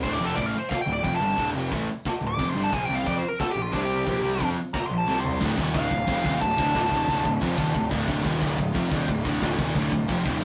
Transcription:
0.03 D1 D2 A2 D3 C5, kick, crash
0.13 D5
0.19 F1 F2 C3 F3
0.24 A4
0.35 A1 A2 E3 A3 D5, kick, open hi-hat
0.46 F5
0.58 C5
0.69 F5, kick, snare, open hi-hat
0.81 G5
0.86 D1 D2 A2
0.92 D5
1.03 F1 F2 C3 F3 G5, kick, open hi-hat
1.16 G2 A5
1.20 G1 D3 G3
1.35 D1 D2 A2 D3, kick, open hi-hat
1.52 F1 F2 C3 F3
1.70 A1 A2 E3 A3, kick, open hi-hat
2.05 kick, snare, open hi-hat
2.21 D1 D2 A2
2.27 D6
2.37 F1 F2 C3 F3, kick, open hi-hat
2.50 G1 G2 C6
2.54 D3 G3
2.63 A5
2.71 A#1 A#2 F3 A#3 G#5, kick, open hi-hat
2.85 C2 C3 G3 C4 G5
2.95 F5
3.04 F2 F3 C4 F4 D5, kick, open hi-hat
3.18 C5
3.28 A#4
3.40 A4, kick, snare, open hi-hat
3.50 G4
3.55 A#1 A#2 F3
3.62 F4
3.72 C2 C3 G3 C4 D4, kick, open hi-hat
3.81 G4
4.05 A#1 A#2 F3 A#3, kick, open hi-hat
4.22 C2 C3 G3 C4
4.39 F2 F3 C4 F4, kick, open hi-hat
4.74 A#5, kick, snare, open hi-hat
4.85 C6
4.90 A#1 A#2 F3
4.98 A5
5.05 C2 C3 G3 C4 A5, snare
5.20 C6, floor tom
5.38 D1 D2 A2 D3 A3 F4 D5, kick, crash, china
5.56 D#1 D#2 A#2 D#3, kick
5.73 D1 D2 A2 D3 F5, kick, china
5.90 D1 D2 A2, kick
6.06 F1 F2 C3 F3, kick, china
6.24 D#1 D#2 A#2 D#3, kick
6.41 D1 D2 A2 A5, kick, china
6.57 D1 D2 A2 D3, kick
6.73 D1 D2 A2 D3, kick, snare, china
6.90 D#1 D#2 A#2 D#3, kick
7.07 D1 D2 A2 D3, kick, china
7.23 D1 D2 A2, kick
7.40 F1 F2 C3 F3, kick, china
7.56 D#1 D#2 A#2 D#3, kick
7.74 D1 D2 A2, kick, china
7.90 D1 D2 A2 D3, kick
8.06 D1 D2 A2 D3, kick, china
8.23 D#1 D#2 A#2 D#3, kick
8.40 D1 D2 A2 D3, kick, china
8.57 D1 D2 A2, kick
8.74 F1 F2 C3 F3, kick, china
8.91 D#1 D#2 A#2 D#3, kick
9.08 D1 D2 A2, kick, china
9.25 D1 D2 A2 D3, kick
9.41 D1 D2 A2 D3, kick, snare, china
9.57 D#1 D#2 A#2 D#3, kick
9.75 D1 D2 A2 D3, kick, china
9.91 D1 D2 A2, kick
10.07 F1 F2 C3 F3, kick, china
10.24 D#1 D#2 A#2 D#3, kick
10.40 G#2 D#3

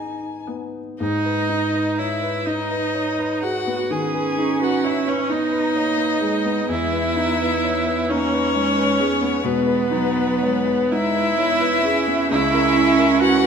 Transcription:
Already playing: B3 D#4 G#4 G#5
0.48 B3
1.00 G#2 D#4 D#5
1.25 B4
1.49 D#4
1.75 B4
1.99 E4 C#5 E5
2.22 B4
2.46 D#4 D#5
2.71 B4
2.95 C#5
3.19 B4
3.42 F#4 G#4 F#5
3.67 B3
3.89 D#3 C#4 G#4 G#5
4.15 B4
4.38 D#4
4.61 F#4 B4 F#5
4.84 E4 C#5 E5
5.08 C#4 B4 C#5
5.29 B3 D#4 D#5
5.52 B4
5.76 A#3 C#5
5.98 B4
6.21 G#3 G#4
6.45 B3
6.68 E2 B3 E4 E5
6.93 B4
7.16 D#4
7.42 B4
7.64 C#5
7.87 B4
8.09 A#3 C#4 D#4 C#5
8.33 B4
8.54 G#3 C#5
8.78 B4
8.99 B3 G#4
9.22 B3
9.43 B2 G#3 B3 B4
9.67 B4
9.91 F#3 D#4
10.17 B4
10.41 G#3 C#5
10.67 B4
10.91 G#3 D#4 E4 E5
11.15 B4
11.37 B3 C#5
11.61 B4
11.83 C#4 G#4
12.07 B3
12.30 C#2 E4 E5
12.53 A#4
12.76 E4
12.99 A#4
13.20 F#4 B4 F#5

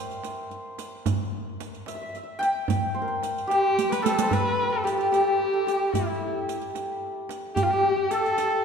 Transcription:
Already playing: A#4 C5 E5 G5
0.10 riq, tombak ka
0.24 riq, tombak tek
0.51 riq, tombak ka
0.79 riq, tombak tek
1.06 riq, tombak dum
1.60 riq, tombak tek
1.75 riq
1.86 E5, riq, tombak tek
1.95 E5
2.01 E5
2.09 E5
2.14 E5, riq, tombak ka
2.23 E5
2.39 G5, riq, tombak tek
2.68 riq, tombak dum
2.95 C5
3.02 A#4
3.08 C5
3.23 riq, tombak tek
3.37 riq, tombak ka
3.47 G4, riq, tombak tek
3.77 riq, tombak ka
3.89 B4, riq
4.02 A4, riq, tombak tek
4.19 C5, riq
4.30 B4, riq, tombak dum
4.70 A4
4.84 G4, riq, tombak tek
4.91 F4
4.97 G4, riq
5.12 G4, riq, tombak tek
5.40 tombak ka
5.53 A4
5.67 G4, riq, tombak tek
5.92 E4, riq, tombak dum
6.49 riq, tombak tek
6.62 riq
6.75 riq, tombak tek
7.29 riq, tombak tek
7.55 G4, riq, tombak dum
7.63 F4 G4
7.70 G4
7.81 G4
7.89 G4
7.96 G4
8.10 A4, riq, tombak tek
8.26 riq
8.38 riq, tombak tek

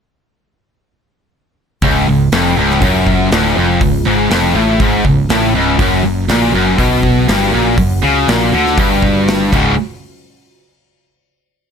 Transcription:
1.82 C#1 C#2 C#3 G#3 F4, kick, open hi-hat
2.08 C#1 C#2
2.32 F1 F2, snare, open hi-hat
2.57 C#1 C#2
2.71 snare
2.82 F#1 F#2, kick, open hi-hat
3.07 kick
3.31 D1 D2, snare, open hi-hat
3.57 F1 F2
3.81 C#1 C#2, kick, open hi-hat
4.07 G#1 G#2
4.30 F1 F2, snare, open hi-hat
4.55 A1 A2
4.80 G#1 G#2, kick, open hi-hat
5.05 C#1 C#2, kick
5.29 A1 A2, snare, open hi-hat
5.55 C#1 C#2
5.79 F#1 F#2 F#3 F#4, kick, open hi-hat
6.04 F#1 F#2
6.28 A#1 A#2, snare, open hi-hat
6.54 F#1 F#2
6.78 B1 B2, kick, open hi-hat
7.03 kick
7.28 G1 G2, snare, open hi-hat
7.54 A#1 A#2
7.78 F#1 F#2, kick, open hi-hat
8.03 C#2 C#3
8.28 A#1 A#2, snare, open hi-hat
8.53 D2 D3
8.66 snare
8.77 G1 G2, kick, open hi-hat
9.02 kick
9.28 snare, open hi-hat
9.53 C#1 C#2 G#2 C#3 G#3 F4, kick, crash

